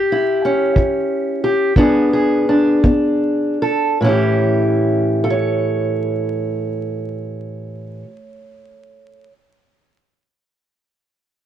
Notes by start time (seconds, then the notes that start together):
Already playing: A2 G4
0.12 E4
0.45 C#4
0.76 E3, kick
1.44 G4
1.76 E3 B3 D4 G#4, kick
2.13 G#4
2.49 D4
2.84 B3, kick
3.62 A4
4.01 A2 E3 C#4
4.07 E4 G4
5.24 A4
5.30 C#5